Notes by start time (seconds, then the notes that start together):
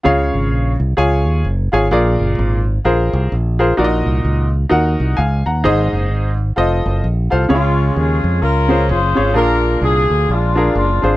0.03 C#2 C#3 F4 G#4 C#5 F5
0.34 G#1
0.51 A#1
0.80 C2
0.97 C#2 F4 G#4 C#5 G#5
1.26 D#2
1.45 F#1
1.72 G#1 F4 G#4 C#5 G#5
1.91 A#1 A#2 F4 G#4 A#4 D5
2.20 F#1
2.39 G#1
2.85 A#1 F4 G#4 A#4 C5
3.13 C2
3.32 A#1
3.59 F4 G#4 A#4 C5
3.77 A#1 A#2 D#4 F#4 A#4 D5
3.84 D#5
4.06 C2
4.25 C#2
4.69 D#2 D#4 F#4 A#4 F#5
5.00 C2
5.17 C#2 F5 G#5
5.46 D#2 F#5 A#5
5.64 G#1 G#2 D#4 G#4 C5 D#5
5.93 F#1
6.11 G#1
6.56 F1 F4 A4 C5 D#5
6.86 F#1
7.04 A#1
7.30 C2 F4 A4 C5 F5
7.49 C#2 C#3 G#3 C#4 F4 G#4 C#5
7.96 D#2 C#4 F4 G#4
8.24 F2
8.41 C#2 C#4 F4 A#4
8.68 C#4 F4 G#4 C5
8.89 F#1 F4 G#4 C5
9.15 G#1 C#4 F4 G#4 C#5
9.34 A#1 A#2 D4 F4 G#4 A#4
9.81 C2 D4 F4 G#4
10.10 D2
10.29 A#1 G#3 D4 F4
10.56 D4 F4 G#4 A#4
10.75 F#1 G#3 D4 F4
11.02 G#1 D4 F4 G#4 C5